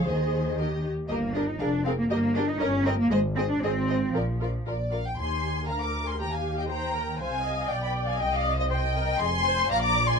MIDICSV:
0, 0, Header, 1, 6, 480
1, 0, Start_track
1, 0, Key_signature, -3, "major"
1, 0, Tempo, 506757
1, 72, Time_signature, 2, 2, 24, 8
1, 3431, Tempo, 515907
1, 5831, Tempo, 501672
1, 9651, End_track
2, 0, Start_track
2, 0, Title_t, "Violin section"
2, 0, Program_c, 0, 48
2, 83, Note_on_c, 0, 75, 56
2, 549, Note_off_c, 0, 75, 0
2, 560, Note_on_c, 0, 75, 50
2, 849, Note_off_c, 0, 75, 0
2, 1035, Note_on_c, 0, 75, 59
2, 1110, Note_off_c, 0, 75, 0
2, 1280, Note_on_c, 0, 75, 52
2, 1356, Note_off_c, 0, 75, 0
2, 1516, Note_on_c, 0, 77, 57
2, 1592, Note_off_c, 0, 77, 0
2, 1751, Note_on_c, 0, 77, 54
2, 1827, Note_off_c, 0, 77, 0
2, 1992, Note_on_c, 0, 75, 67
2, 2068, Note_off_c, 0, 75, 0
2, 2227, Note_on_c, 0, 75, 65
2, 2303, Note_off_c, 0, 75, 0
2, 2472, Note_on_c, 0, 75, 70
2, 2548, Note_off_c, 0, 75, 0
2, 2712, Note_on_c, 0, 75, 75
2, 2788, Note_off_c, 0, 75, 0
2, 2951, Note_on_c, 0, 75, 76
2, 3026, Note_off_c, 0, 75, 0
2, 3211, Note_on_c, 0, 75, 70
2, 3287, Note_off_c, 0, 75, 0
2, 3446, Note_on_c, 0, 75, 60
2, 3520, Note_off_c, 0, 75, 0
2, 3680, Note_on_c, 0, 75, 59
2, 3755, Note_off_c, 0, 75, 0
2, 3935, Note_on_c, 0, 74, 58
2, 4009, Note_off_c, 0, 74, 0
2, 4191, Note_on_c, 0, 74, 51
2, 4265, Note_off_c, 0, 74, 0
2, 4415, Note_on_c, 0, 74, 59
2, 4633, Note_off_c, 0, 74, 0
2, 4651, Note_on_c, 0, 77, 65
2, 4768, Note_off_c, 0, 77, 0
2, 4786, Note_on_c, 0, 79, 59
2, 4895, Note_off_c, 0, 79, 0
2, 4898, Note_on_c, 0, 84, 69
2, 5334, Note_off_c, 0, 84, 0
2, 5369, Note_on_c, 0, 82, 57
2, 5479, Note_on_c, 0, 86, 60
2, 5482, Note_off_c, 0, 82, 0
2, 5714, Note_off_c, 0, 86, 0
2, 5726, Note_on_c, 0, 84, 53
2, 5838, Note_off_c, 0, 84, 0
2, 5841, Note_on_c, 0, 82, 67
2, 5954, Note_off_c, 0, 82, 0
2, 5964, Note_on_c, 0, 80, 58
2, 6198, Note_off_c, 0, 80, 0
2, 6200, Note_on_c, 0, 79, 55
2, 6247, Note_off_c, 0, 79, 0
2, 6312, Note_on_c, 0, 82, 64
2, 6789, Note_off_c, 0, 82, 0
2, 6791, Note_on_c, 0, 80, 79
2, 7263, Note_on_c, 0, 79, 64
2, 7265, Note_off_c, 0, 80, 0
2, 7390, Note_off_c, 0, 79, 0
2, 7394, Note_on_c, 0, 83, 67
2, 7471, Note_off_c, 0, 83, 0
2, 7638, Note_on_c, 0, 80, 63
2, 7752, Note_on_c, 0, 79, 68
2, 7755, Note_off_c, 0, 80, 0
2, 7874, Note_off_c, 0, 79, 0
2, 7880, Note_on_c, 0, 77, 74
2, 8118, Note_off_c, 0, 77, 0
2, 8121, Note_on_c, 0, 75, 69
2, 8168, Note_off_c, 0, 75, 0
2, 8225, Note_on_c, 0, 79, 83
2, 8699, Note_off_c, 0, 79, 0
2, 8701, Note_on_c, 0, 84, 105
2, 9185, Note_off_c, 0, 84, 0
2, 9187, Note_on_c, 0, 82, 92
2, 9303, Note_on_c, 0, 86, 91
2, 9306, Note_off_c, 0, 82, 0
2, 9535, Note_on_c, 0, 84, 89
2, 9541, Note_off_c, 0, 86, 0
2, 9623, Note_off_c, 0, 84, 0
2, 9651, End_track
3, 0, Start_track
3, 0, Title_t, "Violin section"
3, 0, Program_c, 1, 48
3, 60, Note_on_c, 1, 72, 54
3, 552, Note_off_c, 1, 72, 0
3, 556, Note_on_c, 1, 70, 47
3, 632, Note_off_c, 1, 70, 0
3, 1046, Note_on_c, 1, 70, 56
3, 1122, Note_off_c, 1, 70, 0
3, 1289, Note_on_c, 1, 70, 53
3, 1364, Note_off_c, 1, 70, 0
3, 1528, Note_on_c, 1, 70, 55
3, 1604, Note_off_c, 1, 70, 0
3, 1767, Note_on_c, 1, 70, 52
3, 1843, Note_off_c, 1, 70, 0
3, 2000, Note_on_c, 1, 70, 60
3, 2076, Note_off_c, 1, 70, 0
3, 2242, Note_on_c, 1, 70, 65
3, 2318, Note_off_c, 1, 70, 0
3, 2483, Note_on_c, 1, 70, 61
3, 2559, Note_off_c, 1, 70, 0
3, 2718, Note_on_c, 1, 70, 62
3, 2793, Note_off_c, 1, 70, 0
3, 2954, Note_on_c, 1, 72, 76
3, 3030, Note_off_c, 1, 72, 0
3, 3195, Note_on_c, 1, 72, 64
3, 3271, Note_off_c, 1, 72, 0
3, 3446, Note_on_c, 1, 72, 61
3, 3520, Note_off_c, 1, 72, 0
3, 3691, Note_on_c, 1, 72, 49
3, 3765, Note_off_c, 1, 72, 0
3, 3920, Note_on_c, 1, 70, 58
3, 3994, Note_off_c, 1, 70, 0
3, 4162, Note_on_c, 1, 70, 45
3, 4237, Note_off_c, 1, 70, 0
3, 4404, Note_on_c, 1, 70, 47
3, 4478, Note_off_c, 1, 70, 0
3, 4638, Note_on_c, 1, 70, 47
3, 4713, Note_off_c, 1, 70, 0
3, 4885, Note_on_c, 1, 80, 55
3, 5327, Note_off_c, 1, 80, 0
3, 5357, Note_on_c, 1, 77, 46
3, 5463, Note_on_c, 1, 82, 50
3, 5476, Note_off_c, 1, 77, 0
3, 5703, Note_on_c, 1, 80, 47
3, 5706, Note_off_c, 1, 82, 0
3, 5752, Note_off_c, 1, 80, 0
3, 5819, Note_on_c, 1, 79, 55
3, 5943, Note_off_c, 1, 79, 0
3, 5947, Note_on_c, 1, 77, 49
3, 6185, Note_off_c, 1, 77, 0
3, 6194, Note_on_c, 1, 75, 46
3, 6311, Note_on_c, 1, 79, 54
3, 6314, Note_off_c, 1, 75, 0
3, 6789, Note_off_c, 1, 79, 0
3, 6796, Note_on_c, 1, 77, 60
3, 7268, Note_off_c, 1, 77, 0
3, 7276, Note_on_c, 1, 74, 55
3, 7387, Note_on_c, 1, 79, 59
3, 7397, Note_off_c, 1, 74, 0
3, 7628, Note_on_c, 1, 77, 59
3, 7632, Note_off_c, 1, 79, 0
3, 7747, Note_on_c, 1, 75, 54
3, 7753, Note_off_c, 1, 77, 0
3, 7872, Note_off_c, 1, 75, 0
3, 7872, Note_on_c, 1, 74, 64
3, 8104, Note_on_c, 1, 72, 62
3, 8114, Note_off_c, 1, 74, 0
3, 8222, Note_on_c, 1, 75, 75
3, 8228, Note_off_c, 1, 72, 0
3, 8697, Note_off_c, 1, 75, 0
3, 8708, Note_on_c, 1, 80, 81
3, 9178, Note_on_c, 1, 77, 84
3, 9189, Note_off_c, 1, 80, 0
3, 9302, Note_off_c, 1, 77, 0
3, 9305, Note_on_c, 1, 82, 79
3, 9542, Note_off_c, 1, 82, 0
3, 9544, Note_on_c, 1, 80, 90
3, 9649, Note_off_c, 1, 80, 0
3, 9651, End_track
4, 0, Start_track
4, 0, Title_t, "Viola section"
4, 0, Program_c, 2, 48
4, 71, Note_on_c, 2, 68, 53
4, 548, Note_off_c, 2, 68, 0
4, 560, Note_on_c, 2, 67, 53
4, 855, Note_off_c, 2, 67, 0
4, 1049, Note_on_c, 2, 67, 62
4, 1125, Note_off_c, 2, 67, 0
4, 1284, Note_on_c, 2, 67, 56
4, 1360, Note_off_c, 2, 67, 0
4, 1521, Note_on_c, 2, 68, 60
4, 1597, Note_off_c, 2, 68, 0
4, 1759, Note_on_c, 2, 68, 57
4, 1835, Note_off_c, 2, 68, 0
4, 1992, Note_on_c, 2, 67, 66
4, 2068, Note_off_c, 2, 67, 0
4, 2237, Note_on_c, 2, 67, 66
4, 2313, Note_off_c, 2, 67, 0
4, 2468, Note_on_c, 2, 70, 63
4, 2544, Note_off_c, 2, 70, 0
4, 2703, Note_on_c, 2, 70, 60
4, 2778, Note_off_c, 2, 70, 0
4, 2947, Note_on_c, 2, 68, 75
4, 3022, Note_off_c, 2, 68, 0
4, 3189, Note_on_c, 2, 68, 76
4, 3264, Note_off_c, 2, 68, 0
4, 3436, Note_on_c, 2, 68, 65
4, 3510, Note_off_c, 2, 68, 0
4, 3673, Note_on_c, 2, 68, 49
4, 3747, Note_off_c, 2, 68, 0
4, 3917, Note_on_c, 2, 65, 57
4, 3991, Note_off_c, 2, 65, 0
4, 4164, Note_on_c, 2, 65, 54
4, 4238, Note_off_c, 2, 65, 0
4, 4404, Note_on_c, 2, 65, 49
4, 4478, Note_off_c, 2, 65, 0
4, 4637, Note_on_c, 2, 65, 43
4, 4712, Note_off_c, 2, 65, 0
4, 4881, Note_on_c, 2, 67, 46
4, 5325, Note_off_c, 2, 67, 0
4, 5354, Note_on_c, 2, 70, 47
4, 5818, Note_off_c, 2, 70, 0
4, 5832, Note_on_c, 2, 67, 49
4, 6305, Note_on_c, 2, 72, 53
4, 6314, Note_off_c, 2, 67, 0
4, 6547, Note_on_c, 2, 70, 45
4, 6552, Note_off_c, 2, 72, 0
4, 6790, Note_on_c, 2, 72, 52
4, 6795, Note_off_c, 2, 70, 0
4, 7026, Note_on_c, 2, 75, 59
4, 7031, Note_off_c, 2, 72, 0
4, 7267, Note_off_c, 2, 75, 0
4, 7273, Note_on_c, 2, 74, 60
4, 7746, Note_on_c, 2, 75, 69
4, 7755, Note_off_c, 2, 74, 0
4, 8221, Note_off_c, 2, 75, 0
4, 8226, Note_on_c, 2, 72, 60
4, 8302, Note_off_c, 2, 72, 0
4, 8462, Note_on_c, 2, 70, 60
4, 8703, Note_off_c, 2, 70, 0
4, 8706, Note_on_c, 2, 68, 72
4, 8782, Note_off_c, 2, 68, 0
4, 8944, Note_on_c, 2, 72, 77
4, 9182, Note_on_c, 2, 74, 77
4, 9183, Note_off_c, 2, 72, 0
4, 9651, Note_off_c, 2, 74, 0
4, 9651, End_track
5, 0, Start_track
5, 0, Title_t, "Cello section"
5, 0, Program_c, 3, 48
5, 62, Note_on_c, 3, 51, 75
5, 782, Note_off_c, 3, 51, 0
5, 1038, Note_on_c, 3, 58, 86
5, 1264, Note_off_c, 3, 58, 0
5, 1278, Note_on_c, 3, 62, 80
5, 1401, Note_off_c, 3, 62, 0
5, 1405, Note_on_c, 3, 63, 75
5, 1516, Note_on_c, 3, 62, 97
5, 1524, Note_off_c, 3, 63, 0
5, 1759, Note_off_c, 3, 62, 0
5, 1759, Note_on_c, 3, 60, 86
5, 1808, Note_off_c, 3, 60, 0
5, 1886, Note_on_c, 3, 58, 91
5, 1990, Note_off_c, 3, 58, 0
5, 2002, Note_on_c, 3, 58, 101
5, 2235, Note_off_c, 3, 58, 0
5, 2241, Note_on_c, 3, 62, 95
5, 2359, Note_off_c, 3, 62, 0
5, 2364, Note_on_c, 3, 63, 94
5, 2468, Note_on_c, 3, 61, 110
5, 2480, Note_off_c, 3, 63, 0
5, 2701, Note_on_c, 3, 60, 98
5, 2709, Note_off_c, 3, 61, 0
5, 2826, Note_off_c, 3, 60, 0
5, 2828, Note_on_c, 3, 58, 104
5, 2946, Note_off_c, 3, 58, 0
5, 2947, Note_on_c, 3, 56, 103
5, 3023, Note_off_c, 3, 56, 0
5, 3184, Note_on_c, 3, 60, 105
5, 3233, Note_off_c, 3, 60, 0
5, 3316, Note_on_c, 3, 62, 94
5, 3429, Note_on_c, 3, 60, 105
5, 3432, Note_off_c, 3, 62, 0
5, 3912, Note_on_c, 3, 53, 84
5, 3913, Note_off_c, 3, 60, 0
5, 4396, Note_off_c, 3, 53, 0
5, 4877, Note_on_c, 3, 51, 46
5, 5323, Note_off_c, 3, 51, 0
5, 5351, Note_on_c, 3, 50, 43
5, 5825, Note_on_c, 3, 51, 51
5, 5826, Note_off_c, 3, 50, 0
5, 6796, Note_on_c, 3, 48, 60
5, 6797, Note_off_c, 3, 51, 0
5, 7271, Note_on_c, 3, 47, 57
5, 7277, Note_off_c, 3, 48, 0
5, 7744, Note_off_c, 3, 47, 0
5, 7754, Note_on_c, 3, 48, 66
5, 8707, Note_on_c, 3, 41, 68
5, 8713, Note_off_c, 3, 48, 0
5, 9179, Note_off_c, 3, 41, 0
5, 9188, Note_on_c, 3, 46, 74
5, 9651, Note_off_c, 3, 46, 0
5, 9651, End_track
6, 0, Start_track
6, 0, Title_t, "Double bass section"
6, 0, Program_c, 4, 48
6, 69, Note_on_c, 4, 39, 66
6, 852, Note_off_c, 4, 39, 0
6, 1040, Note_on_c, 4, 31, 72
6, 1465, Note_off_c, 4, 31, 0
6, 1517, Note_on_c, 4, 29, 75
6, 1942, Note_off_c, 4, 29, 0
6, 1998, Note_on_c, 4, 31, 77
6, 2419, Note_off_c, 4, 31, 0
6, 2470, Note_on_c, 4, 31, 88
6, 2891, Note_off_c, 4, 31, 0
6, 2944, Note_on_c, 4, 32, 89
6, 3371, Note_off_c, 4, 32, 0
6, 3436, Note_on_c, 4, 32, 87
6, 3860, Note_off_c, 4, 32, 0
6, 3916, Note_on_c, 4, 34, 71
6, 4341, Note_off_c, 4, 34, 0
6, 4401, Note_on_c, 4, 34, 62
6, 4829, Note_off_c, 4, 34, 0
6, 4886, Note_on_c, 4, 39, 49
6, 5327, Note_off_c, 4, 39, 0
6, 5355, Note_on_c, 4, 38, 51
6, 5827, Note_on_c, 4, 39, 50
6, 5828, Note_off_c, 4, 38, 0
6, 6793, Note_on_c, 4, 36, 58
6, 6798, Note_off_c, 4, 39, 0
6, 7276, Note_off_c, 4, 36, 0
6, 7278, Note_on_c, 4, 35, 60
6, 7746, Note_on_c, 4, 36, 61
6, 7748, Note_off_c, 4, 35, 0
6, 8705, Note_on_c, 4, 29, 69
6, 8709, Note_off_c, 4, 36, 0
6, 9178, Note_off_c, 4, 29, 0
6, 9180, Note_on_c, 4, 34, 87
6, 9651, Note_off_c, 4, 34, 0
6, 9651, End_track
0, 0, End_of_file